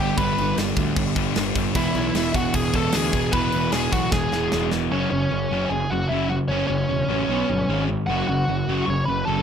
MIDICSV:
0, 0, Header, 1, 6, 480
1, 0, Start_track
1, 0, Tempo, 396040
1, 211, Time_signature, 4, 2, 24, 8
1, 11421, End_track
2, 0, Start_track
2, 0, Title_t, "Lead electric guitar"
2, 0, Program_c, 0, 29
2, 0, Note_on_c, 0, 67, 76
2, 0, Note_on_c, 0, 79, 98
2, 208, Note_off_c, 0, 67, 0
2, 210, Note_on_c, 0, 83, 101
2, 220, Note_on_c, 0, 71, 74
2, 222, Note_off_c, 0, 79, 0
2, 656, Note_off_c, 0, 83, 0
2, 662, Note_off_c, 0, 71, 0
2, 2130, Note_on_c, 0, 64, 71
2, 2139, Note_on_c, 0, 76, 86
2, 2799, Note_off_c, 0, 64, 0
2, 2850, Note_on_c, 0, 66, 71
2, 2857, Note_on_c, 0, 78, 76
2, 2873, Note_off_c, 0, 76, 0
2, 3072, Note_off_c, 0, 66, 0
2, 3092, Note_on_c, 0, 80, 87
2, 3093, Note_off_c, 0, 78, 0
2, 3099, Note_on_c, 0, 68, 77
2, 3316, Note_off_c, 0, 68, 0
2, 3337, Note_off_c, 0, 80, 0
2, 3337, Note_on_c, 0, 81, 105
2, 3349, Note_on_c, 0, 69, 81
2, 3560, Note_off_c, 0, 69, 0
2, 3579, Note_on_c, 0, 68, 78
2, 3584, Note_off_c, 0, 81, 0
2, 3584, Note_on_c, 0, 80, 94
2, 4019, Note_off_c, 0, 68, 0
2, 4035, Note_on_c, 0, 71, 94
2, 4039, Note_on_c, 0, 83, 95
2, 4066, Note_off_c, 0, 80, 0
2, 4486, Note_off_c, 0, 71, 0
2, 4508, Note_on_c, 0, 68, 71
2, 4515, Note_on_c, 0, 80, 83
2, 4533, Note_off_c, 0, 83, 0
2, 4739, Note_off_c, 0, 68, 0
2, 4754, Note_on_c, 0, 66, 71
2, 4758, Note_off_c, 0, 80, 0
2, 4758, Note_on_c, 0, 78, 74
2, 4982, Note_off_c, 0, 66, 0
2, 4991, Note_on_c, 0, 68, 70
2, 4996, Note_off_c, 0, 78, 0
2, 5001, Note_on_c, 0, 80, 73
2, 5669, Note_off_c, 0, 68, 0
2, 5670, Note_off_c, 0, 80, 0
2, 5962, Note_on_c, 0, 61, 70
2, 5964, Note_on_c, 0, 73, 75
2, 6173, Note_off_c, 0, 73, 0
2, 6186, Note_off_c, 0, 61, 0
2, 6187, Note_on_c, 0, 73, 84
2, 6211, Note_on_c, 0, 61, 66
2, 6879, Note_off_c, 0, 61, 0
2, 6904, Note_on_c, 0, 80, 92
2, 6927, Note_on_c, 0, 68, 68
2, 6937, Note_off_c, 0, 73, 0
2, 7148, Note_off_c, 0, 68, 0
2, 7152, Note_on_c, 0, 78, 83
2, 7161, Note_off_c, 0, 80, 0
2, 7162, Note_on_c, 0, 66, 67
2, 7375, Note_off_c, 0, 78, 0
2, 7379, Note_on_c, 0, 76, 81
2, 7386, Note_off_c, 0, 66, 0
2, 7400, Note_on_c, 0, 64, 66
2, 7614, Note_off_c, 0, 76, 0
2, 7625, Note_off_c, 0, 64, 0
2, 7631, Note_on_c, 0, 78, 101
2, 7657, Note_on_c, 0, 66, 80
2, 7698, Note_off_c, 0, 78, 0
2, 7720, Note_off_c, 0, 66, 0
2, 7857, Note_on_c, 0, 73, 89
2, 7875, Note_on_c, 0, 61, 71
2, 8073, Note_off_c, 0, 73, 0
2, 8088, Note_on_c, 0, 73, 95
2, 8093, Note_off_c, 0, 61, 0
2, 8108, Note_on_c, 0, 61, 72
2, 9500, Note_off_c, 0, 73, 0
2, 9510, Note_off_c, 0, 61, 0
2, 9777, Note_on_c, 0, 78, 102
2, 9820, Note_on_c, 0, 66, 79
2, 10015, Note_off_c, 0, 78, 0
2, 10031, Note_on_c, 0, 78, 97
2, 10038, Note_off_c, 0, 66, 0
2, 10057, Note_on_c, 0, 66, 83
2, 10712, Note_off_c, 0, 78, 0
2, 10724, Note_off_c, 0, 66, 0
2, 10739, Note_on_c, 0, 85, 98
2, 10784, Note_on_c, 0, 73, 74
2, 10969, Note_off_c, 0, 85, 0
2, 10974, Note_on_c, 0, 83, 98
2, 11000, Note_off_c, 0, 73, 0
2, 11021, Note_on_c, 0, 71, 78
2, 11207, Note_off_c, 0, 83, 0
2, 11212, Note_on_c, 0, 81, 98
2, 11238, Note_off_c, 0, 71, 0
2, 11246, Note_on_c, 0, 69, 77
2, 11421, Note_off_c, 0, 69, 0
2, 11421, Note_off_c, 0, 81, 0
2, 11421, End_track
3, 0, Start_track
3, 0, Title_t, "Distorted electric guitar"
3, 0, Program_c, 1, 30
3, 0, Note_on_c, 1, 43, 85
3, 0, Note_on_c, 1, 50, 91
3, 0, Note_on_c, 1, 55, 100
3, 0, Note_on_c, 1, 62, 103
3, 194, Note_off_c, 1, 43, 0
3, 211, Note_off_c, 1, 50, 0
3, 220, Note_off_c, 1, 55, 0
3, 655, Note_off_c, 1, 62, 0
3, 11421, End_track
4, 0, Start_track
4, 0, Title_t, "Distorted electric guitar"
4, 0, Program_c, 2, 30
4, 0, Note_on_c, 2, 43, 77
4, 0, Note_on_c, 2, 50, 98
4, 0, Note_on_c, 2, 55, 93
4, 0, Note_on_c, 2, 62, 84
4, 183, Note_off_c, 2, 43, 0
4, 197, Note_on_c, 2, 43, 89
4, 205, Note_off_c, 2, 50, 0
4, 216, Note_off_c, 2, 55, 0
4, 220, Note_on_c, 2, 50, 91
4, 234, Note_on_c, 2, 55, 110
4, 1388, Note_off_c, 2, 43, 0
4, 1398, Note_off_c, 2, 55, 0
4, 1399, Note_off_c, 2, 50, 0
4, 1412, Note_on_c, 2, 55, 97
4, 1424, Note_on_c, 2, 50, 92
4, 1440, Note_on_c, 2, 43, 71
4, 1627, Note_off_c, 2, 43, 0
4, 1635, Note_off_c, 2, 50, 0
4, 1636, Note_off_c, 2, 55, 0
4, 1641, Note_on_c, 2, 43, 80
4, 1650, Note_on_c, 2, 50, 92
4, 1665, Note_on_c, 2, 55, 89
4, 2095, Note_off_c, 2, 62, 0
4, 2110, Note_off_c, 2, 43, 0
4, 2114, Note_off_c, 2, 50, 0
4, 2121, Note_off_c, 2, 55, 0
4, 2121, Note_on_c, 2, 40, 95
4, 2142, Note_on_c, 2, 47, 101
4, 2158, Note_on_c, 2, 52, 107
4, 3295, Note_off_c, 2, 52, 0
4, 3307, Note_off_c, 2, 40, 0
4, 3310, Note_on_c, 2, 52, 83
4, 3318, Note_off_c, 2, 47, 0
4, 3331, Note_on_c, 2, 47, 83
4, 3344, Note_on_c, 2, 40, 73
4, 3515, Note_off_c, 2, 40, 0
4, 3530, Note_on_c, 2, 40, 84
4, 3533, Note_off_c, 2, 47, 0
4, 3543, Note_off_c, 2, 52, 0
4, 3548, Note_on_c, 2, 47, 98
4, 3565, Note_on_c, 2, 52, 99
4, 3996, Note_off_c, 2, 40, 0
4, 4011, Note_on_c, 2, 40, 95
4, 4015, Note_off_c, 2, 47, 0
4, 4030, Note_off_c, 2, 52, 0
4, 4030, Note_on_c, 2, 47, 94
4, 4042, Note_on_c, 2, 52, 96
4, 5211, Note_off_c, 2, 40, 0
4, 5221, Note_off_c, 2, 47, 0
4, 5223, Note_off_c, 2, 52, 0
4, 5238, Note_on_c, 2, 52, 86
4, 5253, Note_on_c, 2, 47, 81
4, 5265, Note_on_c, 2, 40, 69
4, 5458, Note_off_c, 2, 40, 0
4, 5466, Note_off_c, 2, 52, 0
4, 5472, Note_on_c, 2, 40, 77
4, 5473, Note_off_c, 2, 47, 0
4, 5489, Note_on_c, 2, 47, 88
4, 5504, Note_on_c, 2, 52, 90
4, 5943, Note_off_c, 2, 40, 0
4, 5950, Note_on_c, 2, 42, 81
4, 5951, Note_off_c, 2, 47, 0
4, 5951, Note_off_c, 2, 52, 0
4, 5955, Note_on_c, 2, 54, 89
4, 5956, Note_on_c, 2, 49, 81
4, 6182, Note_off_c, 2, 42, 0
4, 6184, Note_off_c, 2, 54, 0
4, 6185, Note_off_c, 2, 49, 0
4, 6197, Note_on_c, 2, 42, 72
4, 6203, Note_on_c, 2, 49, 70
4, 6416, Note_off_c, 2, 42, 0
4, 6419, Note_off_c, 2, 49, 0
4, 6437, Note_on_c, 2, 42, 76
4, 6442, Note_on_c, 2, 49, 91
4, 6656, Note_off_c, 2, 42, 0
4, 6658, Note_off_c, 2, 49, 0
4, 6688, Note_on_c, 2, 42, 87
4, 6698, Note_on_c, 2, 54, 105
4, 6701, Note_on_c, 2, 49, 94
4, 6911, Note_off_c, 2, 42, 0
4, 6916, Note_off_c, 2, 54, 0
4, 6917, Note_off_c, 2, 49, 0
4, 6927, Note_on_c, 2, 42, 78
4, 6931, Note_on_c, 2, 49, 90
4, 7141, Note_off_c, 2, 42, 0
4, 7143, Note_off_c, 2, 49, 0
4, 7183, Note_on_c, 2, 49, 70
4, 7184, Note_on_c, 2, 42, 71
4, 7384, Note_off_c, 2, 42, 0
4, 7390, Note_off_c, 2, 49, 0
4, 7398, Note_on_c, 2, 42, 90
4, 7412, Note_on_c, 2, 49, 100
4, 7414, Note_on_c, 2, 54, 107
4, 7627, Note_off_c, 2, 42, 0
4, 7634, Note_off_c, 2, 49, 0
4, 7635, Note_off_c, 2, 54, 0
4, 7650, Note_on_c, 2, 42, 70
4, 7661, Note_on_c, 2, 49, 81
4, 7863, Note_off_c, 2, 42, 0
4, 7869, Note_off_c, 2, 49, 0
4, 7891, Note_on_c, 2, 42, 84
4, 7892, Note_on_c, 2, 49, 103
4, 7903, Note_on_c, 2, 54, 98
4, 8114, Note_off_c, 2, 42, 0
4, 8114, Note_off_c, 2, 49, 0
4, 8120, Note_off_c, 2, 54, 0
4, 8128, Note_on_c, 2, 42, 74
4, 8136, Note_on_c, 2, 49, 67
4, 8335, Note_off_c, 2, 42, 0
4, 8340, Note_off_c, 2, 49, 0
4, 8350, Note_on_c, 2, 42, 80
4, 8355, Note_on_c, 2, 49, 91
4, 8574, Note_off_c, 2, 42, 0
4, 8576, Note_off_c, 2, 49, 0
4, 8587, Note_on_c, 2, 42, 93
4, 8596, Note_on_c, 2, 49, 85
4, 8603, Note_on_c, 2, 54, 96
4, 8823, Note_off_c, 2, 42, 0
4, 8827, Note_off_c, 2, 49, 0
4, 8830, Note_off_c, 2, 54, 0
4, 8843, Note_on_c, 2, 47, 89
4, 8847, Note_on_c, 2, 54, 85
4, 8858, Note_on_c, 2, 59, 111
4, 9066, Note_off_c, 2, 47, 0
4, 9073, Note_off_c, 2, 54, 0
4, 9078, Note_off_c, 2, 59, 0
4, 9080, Note_on_c, 2, 47, 67
4, 9090, Note_on_c, 2, 54, 74
4, 9300, Note_off_c, 2, 47, 0
4, 9305, Note_off_c, 2, 54, 0
4, 9325, Note_on_c, 2, 44, 93
4, 9331, Note_on_c, 2, 51, 103
4, 9338, Note_on_c, 2, 56, 101
4, 9552, Note_off_c, 2, 44, 0
4, 9555, Note_off_c, 2, 51, 0
4, 9559, Note_off_c, 2, 56, 0
4, 9568, Note_on_c, 2, 44, 72
4, 9569, Note_on_c, 2, 51, 72
4, 9784, Note_off_c, 2, 44, 0
4, 9784, Note_off_c, 2, 51, 0
4, 9802, Note_on_c, 2, 42, 79
4, 9810, Note_on_c, 2, 49, 88
4, 9810, Note_on_c, 2, 54, 88
4, 10028, Note_off_c, 2, 42, 0
4, 10028, Note_off_c, 2, 49, 0
4, 10035, Note_off_c, 2, 54, 0
4, 10042, Note_on_c, 2, 42, 68
4, 10043, Note_on_c, 2, 49, 72
4, 10261, Note_off_c, 2, 42, 0
4, 10262, Note_off_c, 2, 49, 0
4, 10294, Note_on_c, 2, 42, 79
4, 10300, Note_on_c, 2, 49, 98
4, 10507, Note_off_c, 2, 42, 0
4, 10510, Note_off_c, 2, 49, 0
4, 10530, Note_on_c, 2, 42, 72
4, 10538, Note_on_c, 2, 49, 103
4, 10543, Note_on_c, 2, 54, 102
4, 10755, Note_off_c, 2, 42, 0
4, 10759, Note_off_c, 2, 49, 0
4, 10761, Note_off_c, 2, 54, 0
4, 10770, Note_on_c, 2, 42, 78
4, 10775, Note_on_c, 2, 49, 90
4, 10985, Note_off_c, 2, 42, 0
4, 10988, Note_off_c, 2, 49, 0
4, 11008, Note_on_c, 2, 42, 69
4, 11013, Note_on_c, 2, 49, 81
4, 11224, Note_off_c, 2, 42, 0
4, 11227, Note_off_c, 2, 49, 0
4, 11244, Note_on_c, 2, 42, 99
4, 11246, Note_on_c, 2, 49, 96
4, 11250, Note_on_c, 2, 54, 97
4, 11421, Note_off_c, 2, 42, 0
4, 11421, Note_off_c, 2, 49, 0
4, 11421, Note_off_c, 2, 54, 0
4, 11421, End_track
5, 0, Start_track
5, 0, Title_t, "Picked electric bass"
5, 0, Program_c, 3, 34
5, 0, Note_on_c, 3, 31, 99
5, 149, Note_off_c, 3, 31, 0
5, 213, Note_on_c, 3, 31, 95
5, 389, Note_off_c, 3, 31, 0
5, 461, Note_on_c, 3, 31, 94
5, 634, Note_off_c, 3, 31, 0
5, 694, Note_on_c, 3, 31, 93
5, 870, Note_off_c, 3, 31, 0
5, 932, Note_on_c, 3, 38, 97
5, 1108, Note_off_c, 3, 38, 0
5, 1171, Note_on_c, 3, 31, 98
5, 1348, Note_off_c, 3, 31, 0
5, 1407, Note_on_c, 3, 31, 97
5, 1585, Note_off_c, 3, 31, 0
5, 1652, Note_on_c, 3, 31, 99
5, 1828, Note_off_c, 3, 31, 0
5, 1885, Note_on_c, 3, 31, 101
5, 2063, Note_off_c, 3, 31, 0
5, 2120, Note_on_c, 3, 28, 96
5, 2300, Note_off_c, 3, 28, 0
5, 2362, Note_on_c, 3, 35, 101
5, 2541, Note_off_c, 3, 35, 0
5, 2604, Note_on_c, 3, 28, 93
5, 2782, Note_off_c, 3, 28, 0
5, 2839, Note_on_c, 3, 28, 91
5, 3019, Note_off_c, 3, 28, 0
5, 3082, Note_on_c, 3, 28, 101
5, 3260, Note_off_c, 3, 28, 0
5, 3316, Note_on_c, 3, 28, 89
5, 3497, Note_off_c, 3, 28, 0
5, 3567, Note_on_c, 3, 38, 93
5, 3744, Note_off_c, 3, 38, 0
5, 3798, Note_on_c, 3, 28, 88
5, 3977, Note_off_c, 3, 28, 0
5, 4036, Note_on_c, 3, 28, 87
5, 4216, Note_off_c, 3, 28, 0
5, 4291, Note_on_c, 3, 28, 94
5, 4466, Note_off_c, 3, 28, 0
5, 4523, Note_on_c, 3, 28, 84
5, 4700, Note_off_c, 3, 28, 0
5, 4758, Note_on_c, 3, 35, 98
5, 4937, Note_off_c, 3, 35, 0
5, 4995, Note_on_c, 3, 28, 95
5, 5175, Note_off_c, 3, 28, 0
5, 5247, Note_on_c, 3, 28, 84
5, 5422, Note_off_c, 3, 28, 0
5, 5491, Note_on_c, 3, 28, 94
5, 5665, Note_off_c, 3, 28, 0
5, 5726, Note_on_c, 3, 28, 85
5, 5902, Note_off_c, 3, 28, 0
5, 5962, Note_on_c, 3, 30, 81
5, 6122, Note_off_c, 3, 30, 0
5, 6203, Note_on_c, 3, 30, 90
5, 6363, Note_off_c, 3, 30, 0
5, 6444, Note_on_c, 3, 30, 81
5, 6604, Note_off_c, 3, 30, 0
5, 6676, Note_on_c, 3, 30, 86
5, 6839, Note_off_c, 3, 30, 0
5, 6914, Note_on_c, 3, 30, 92
5, 7078, Note_off_c, 3, 30, 0
5, 7149, Note_on_c, 3, 30, 83
5, 7315, Note_off_c, 3, 30, 0
5, 7403, Note_on_c, 3, 30, 85
5, 7724, Note_off_c, 3, 30, 0
5, 7867, Note_on_c, 3, 30, 88
5, 8034, Note_off_c, 3, 30, 0
5, 8117, Note_on_c, 3, 30, 91
5, 8280, Note_off_c, 3, 30, 0
5, 8354, Note_on_c, 3, 28, 80
5, 8519, Note_off_c, 3, 28, 0
5, 8591, Note_on_c, 3, 33, 89
5, 8757, Note_off_c, 3, 33, 0
5, 8834, Note_on_c, 3, 35, 85
5, 8999, Note_off_c, 3, 35, 0
5, 9086, Note_on_c, 3, 31, 93
5, 9247, Note_off_c, 3, 31, 0
5, 9321, Note_on_c, 3, 32, 89
5, 9644, Note_off_c, 3, 32, 0
5, 9798, Note_on_c, 3, 30, 92
5, 9962, Note_off_c, 3, 30, 0
5, 10049, Note_on_c, 3, 30, 88
5, 10209, Note_off_c, 3, 30, 0
5, 10274, Note_on_c, 3, 30, 86
5, 10439, Note_off_c, 3, 30, 0
5, 10519, Note_on_c, 3, 30, 81
5, 10682, Note_off_c, 3, 30, 0
5, 10762, Note_on_c, 3, 30, 89
5, 10924, Note_off_c, 3, 30, 0
5, 11006, Note_on_c, 3, 30, 83
5, 11167, Note_off_c, 3, 30, 0
5, 11244, Note_on_c, 3, 30, 88
5, 11421, Note_off_c, 3, 30, 0
5, 11421, End_track
6, 0, Start_track
6, 0, Title_t, "Drums"
6, 214, Note_on_c, 9, 36, 113
6, 217, Note_on_c, 9, 49, 81
6, 335, Note_off_c, 9, 36, 0
6, 338, Note_off_c, 9, 49, 0
6, 464, Note_on_c, 9, 49, 61
6, 586, Note_off_c, 9, 49, 0
6, 698, Note_on_c, 9, 49, 84
6, 705, Note_on_c, 9, 38, 124
6, 819, Note_off_c, 9, 49, 0
6, 826, Note_off_c, 9, 38, 0
6, 930, Note_on_c, 9, 36, 93
6, 931, Note_on_c, 9, 49, 69
6, 1051, Note_off_c, 9, 36, 0
6, 1052, Note_off_c, 9, 49, 0
6, 1167, Note_on_c, 9, 49, 90
6, 1169, Note_on_c, 9, 36, 115
6, 1288, Note_off_c, 9, 49, 0
6, 1290, Note_off_c, 9, 36, 0
6, 1407, Note_on_c, 9, 36, 96
6, 1409, Note_on_c, 9, 49, 68
6, 1528, Note_off_c, 9, 36, 0
6, 1530, Note_off_c, 9, 49, 0
6, 1643, Note_on_c, 9, 49, 90
6, 1650, Note_on_c, 9, 38, 127
6, 1764, Note_off_c, 9, 49, 0
6, 1771, Note_off_c, 9, 38, 0
6, 1884, Note_on_c, 9, 49, 64
6, 1885, Note_on_c, 9, 36, 86
6, 2006, Note_off_c, 9, 36, 0
6, 2006, Note_off_c, 9, 49, 0
6, 2122, Note_on_c, 9, 49, 86
6, 2123, Note_on_c, 9, 36, 111
6, 2244, Note_off_c, 9, 36, 0
6, 2244, Note_off_c, 9, 49, 0
6, 2362, Note_on_c, 9, 49, 62
6, 2484, Note_off_c, 9, 49, 0
6, 2603, Note_on_c, 9, 49, 91
6, 2610, Note_on_c, 9, 38, 105
6, 2724, Note_off_c, 9, 49, 0
6, 2731, Note_off_c, 9, 38, 0
6, 2842, Note_on_c, 9, 36, 95
6, 2844, Note_on_c, 9, 49, 66
6, 2963, Note_off_c, 9, 36, 0
6, 2965, Note_off_c, 9, 49, 0
6, 3073, Note_on_c, 9, 49, 91
6, 3079, Note_on_c, 9, 36, 112
6, 3194, Note_off_c, 9, 49, 0
6, 3200, Note_off_c, 9, 36, 0
6, 3312, Note_on_c, 9, 49, 74
6, 3317, Note_on_c, 9, 36, 91
6, 3433, Note_off_c, 9, 49, 0
6, 3438, Note_off_c, 9, 36, 0
6, 3544, Note_on_c, 9, 49, 104
6, 3551, Note_on_c, 9, 38, 127
6, 3665, Note_off_c, 9, 49, 0
6, 3672, Note_off_c, 9, 38, 0
6, 3788, Note_on_c, 9, 49, 60
6, 3795, Note_on_c, 9, 36, 87
6, 3909, Note_off_c, 9, 49, 0
6, 3916, Note_off_c, 9, 36, 0
6, 4028, Note_on_c, 9, 49, 78
6, 4035, Note_on_c, 9, 36, 115
6, 4149, Note_off_c, 9, 49, 0
6, 4156, Note_off_c, 9, 36, 0
6, 4269, Note_on_c, 9, 49, 64
6, 4390, Note_off_c, 9, 49, 0
6, 4509, Note_on_c, 9, 49, 90
6, 4517, Note_on_c, 9, 38, 103
6, 4631, Note_off_c, 9, 49, 0
6, 4638, Note_off_c, 9, 38, 0
6, 4757, Note_on_c, 9, 36, 90
6, 4760, Note_on_c, 9, 49, 62
6, 4879, Note_off_c, 9, 36, 0
6, 4881, Note_off_c, 9, 49, 0
6, 4996, Note_on_c, 9, 36, 121
6, 5000, Note_on_c, 9, 38, 74
6, 5117, Note_off_c, 9, 36, 0
6, 5122, Note_off_c, 9, 38, 0
6, 5239, Note_on_c, 9, 38, 69
6, 5360, Note_off_c, 9, 38, 0
6, 5477, Note_on_c, 9, 38, 111
6, 5598, Note_off_c, 9, 38, 0
6, 5714, Note_on_c, 9, 38, 94
6, 5835, Note_off_c, 9, 38, 0
6, 11421, End_track
0, 0, End_of_file